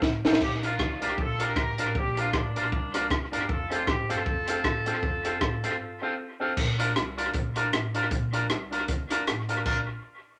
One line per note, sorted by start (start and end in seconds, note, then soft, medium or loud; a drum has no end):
0.02 0.21 A1 medium
0.02 kick loud
0.02 snare medium
0.24 0.39 A1 medium
0.24 0.36 C4 medium
0.24 0.33 D4 medium
0.24 0.36 F4 medium
0.24 0.34 F4 medium
0.24 0.36 A4 medium
0.24 0.36 A4 loud
0.24 0.36 C5 medium
0.24 0.37 F5 medium
0.24 snare medium
0.33 snare medium
0.41 0.74 A#1 loud
0.41 0.52 D4 medium
0.41 0.52 G4 loud
0.41 kick loud
0.41 crash medium
0.63 0.74 D4 medium
0.63 0.99 D4 medium
0.63 0.74 F4 medium
0.63 1.00 F4 loud
0.63 0.74 A#4 medium
0.63 0.75 A#4 loud
0.63 0.75 D5 medium
0.63 0.75 F5 medium
0.63 closed hi-hat medium
0.79 0.98 D2 medium
0.79 kick loud
0.79 cross-stick loud
1.01 1.15 C2 medium
1.01 1.13 D4 medium
1.01 1.17 D#4 medium
1.01 1.13 F4 medium
1.01 1.18 G4 loud
1.01 1.13 A#4 medium
1.01 1.13 A#4 loud
1.01 1.13 D5 loud
1.01 1.13 F5 loud
1.01 closed hi-hat medium
1.18 1.51 A#1 medium
1.18 1.41 F4 medium
1.18 1.41 A4 loud
1.18 kick loud
1.39 1.51 D4 medium
1.39 1.52 F4 medium
1.39 1.79 G4 medium
1.39 1.51 A#4 medium
1.39 1.52 A#4 loud
1.39 1.80 A#4 loud
1.39 1.52 D5 medium
1.39 1.52 F5 medium
1.39 closed hi-hat medium
1.56 1.75 A1 loud
1.56 muted clean electric guitar stroke soft
1.56 kick loud
1.56 cross-stick loud
1.78 1.93 A1 medium
1.78 1.90 D4 medium
1.78 1.90 F4 medium
1.78 1.96 G4 medium
1.78 1.90 A#4 medium
1.78 1.90 A#4 loud
1.78 1.95 A#4 loud
1.78 1.90 D5 medium
1.78 1.91 F5 medium
1.78 closed hi-hat medium
1.95 2.28 A#1 loud
1.95 2.19 D4 medium
1.95 2.19 G4 loud
1.95 kick loud
2.17 2.28 D4 medium
2.17 2.34 D4 medium
2.17 2.29 F4 medium
2.17 2.34 F4 medium
2.17 2.29 A#4 medium
2.17 2.29 A#4 loud
2.17 2.29 D5 medium
2.17 2.29 F5 medium
2.17 closed hi-hat medium
2.33 2.52 A1 loud
2.33 3.12 A#3 medium
2.33 3.12 D4 medium
2.33 kick loud
2.33 cross-stick loud
2.55 2.70 A#1 medium
2.55 2.67 D4 medium
2.55 2.67 F4 medium
2.55 2.67 A#4 medium
2.55 2.68 D5 loud
2.55 2.68 F5 medium
2.55 closed hi-hat medium
2.72 3.11 C2 medium
2.72 kick loud
2.93 3.05 D4 loud
2.93 3.05 F4 medium
2.93 3.05 A#4 medium
2.93 3.06 A#4 loud
2.93 3.06 D5 medium
2.93 3.06 F5 medium
2.93 cross-stick medium
2.93 closed hi-hat medium
3.10 3.30 D2 loud
3.10 muted clean electric guitar stroke soft
3.10 kick loud
3.10 cross-stick loud
3.32 3.46 G1 medium
3.32 3.43 D4 loud
3.32 3.44 F4 medium
3.32 3.49 G4 medium
3.32 3.44 A#4 medium
3.32 3.44 A#4 loud
3.32 3.48 A#4 medium
3.32 3.44 D5 loud
3.32 3.45 F5 medium
3.32 closed hi-hat medium
3.49 3.82 F1 loud
3.49 3.71 F4 medium
3.49 3.72 A4 loud
3.49 kick loud
3.70 3.82 C4 loud
3.70 3.88 D4 medium
3.70 3.82 F4 medium
3.70 3.87 F4 medium
3.70 3.82 A4 medium
3.70 3.83 A4 loud
3.70 3.83 C5 medium
3.70 3.83 F5 medium
3.70 closed hi-hat medium
3.87 4.06 A1 loud
3.87 4.09 C4 medium
3.87 4.09 G4 medium
3.87 kick loud
3.87 cross-stick loud
4.09 4.24 G1 medium
4.09 4.21 C4 medium
4.09 4.21 F4 medium
4.09 6.20 F4 medium
4.09 4.21 A4 medium
4.09 4.21 A4 loud
4.09 6.19 A4 loud
4.09 4.21 C5 loud
4.09 4.21 F5 loud
4.09 closed hi-hat medium
4.26 4.59 F1 loud
4.26 kick loud
4.47 4.59 C4 medium
4.47 4.60 F4 medium
4.47 4.59 A4 medium
4.47 4.60 A4 loud
4.47 4.60 C5 medium
4.47 4.60 F5 medium
4.47 closed hi-hat medium
4.64 4.83 A1 medium
4.64 muted clean electric guitar stroke soft
4.64 kick loud
4.64 cross-stick loud
4.86 5.01 G1 loud
4.86 4.98 C4 medium
4.86 4.98 F4 medium
4.86 4.98 A4 medium
4.86 4.98 A4 loud
4.86 4.98 C5 medium
4.86 4.98 F5 loud
4.86 closed hi-hat medium
5.03 5.36 F1 loud
5.03 kick loud
5.24 5.36 C4 medium
5.24 5.37 F4 medium
5.24 5.36 A4 medium
5.24 5.37 A4 loud
5.24 5.36 C5 medium
5.24 5.37 F5 medium
5.24 closed hi-hat medium
5.41 5.60 A1 medium
5.41 kick loud
5.41 cross-stick loud
5.63 5.78 G1 loud
5.63 5.75 C4 medium
5.63 5.75 F4 medium
5.63 5.75 A4 medium
5.63 5.76 A4 medium
5.63 5.75 C5 medium
5.63 5.75 F5 medium
5.63 closed hi-hat medium
6.02 6.13 C4 medium
6.02 6.14 F4 medium
6.02 6.13 A4 medium
6.02 6.14 A4 loud
6.02 6.14 C5 medium
6.02 6.14 F5 medium
6.18 muted clean electric guitar stroke soft
6.40 6.52 C4 medium
6.40 6.52 F4 medium
6.40 6.52 A4 medium
6.40 6.52 A4 loud
6.40 6.52 C5 medium
6.40 6.52 F5 medium
6.57 6.90 A#1 loud
6.57 kick loud
6.57 crash medium
6.78 6.90 D4 medium
6.78 6.90 F4 medium
6.78 6.91 F4 medium
6.78 6.91 A#4 medium
6.78 6.91 A#4 loud
6.78 6.91 D5 medium
6.78 closed hi-hat medium
6.96 7.29 C2 loud
6.96 cross-stick loud
6.96 closed hi-hat medium
7.17 7.29 D4 medium
7.17 7.29 F4 loud
7.17 7.29 F4 medium
7.17 7.29 A#4 medium
7.17 7.30 A#4 loud
7.17 7.30 D5 medium
7.17 closed hi-hat medium
7.33 7.67 A#1 medium
7.33 kick loud
7.33 closed hi-hat medium
7.56 7.67 D4 loud
7.56 7.68 F4 medium
7.56 7.68 A#4 medium
7.56 7.68 A#4 loud
7.56 7.68 D5 loud
7.56 closed hi-hat medium
7.72 8.05 A1 loud
7.72 cross-stick loud
7.72 closed hi-hat medium
7.94 8.06 D4 loud
7.94 8.06 F4 medium
7.94 8.06 A#4 medium
7.94 8.07 A#4 loud
7.94 8.07 D5 loud
7.94 closed hi-hat medium
8.11 8.44 A#1 loud
8.11 kick loud
8.11 closed hi-hat medium
8.33 8.44 D4 loud
8.33 8.45 F4 medium
8.33 8.45 A#4 medium
8.33 8.45 A#4 loud
8.33 8.46 D5 medium
8.33 closed hi-hat medium
8.49 8.83 C2 loud
8.49 cross-stick loud
8.49 closed hi-hat medium
8.71 8.83 D4 medium
8.71 8.83 F4 medium
8.71 8.84 A#4 loud
8.71 8.84 D5 loud
8.71 closed hi-hat medium
8.88 9.21 D2 medium
8.88 kick loud
8.88 closed hi-hat medium
9.10 9.22 D4 loud
9.10 9.22 F4 medium
9.10 9.22 A#4 medium
9.10 9.23 A#4 loud
9.10 9.23 D5 loud
9.10 cross-stick medium
9.10 closed hi-hat medium
9.27 9.60 A1 medium
9.27 cross-stick loud
9.27 closed hi-hat medium
9.49 9.61 D4 medium
9.49 9.60 F4 medium
9.49 9.61 F4 medium
9.49 9.61 A#4 medium
9.49 9.61 A#4 loud
9.49 9.61 D5 medium
9.49 closed hi-hat medium
9.65 9.87 A#1 medium
9.65 9.82 D4 medium
9.65 9.79 F4 medium
9.65 9.83 F4 medium
9.65 9.80 A#4 medium
9.65 9.83 A#4 loud
9.65 9.80 D5 medium
9.65 kick loud
9.65 splash medium